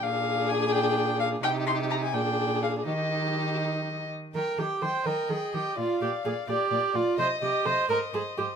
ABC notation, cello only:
X:1
M:6/8
L:1/8
Q:3/8=84
K:Eb
V:1 name="Cello" clef=bass
B,,6 | C,3 B,,3 | E,4- E, z | E, E, E, E, E, E, |
B,, B,, B,, B,, B,, B,, | C, C, C, A,, A,, A,, |]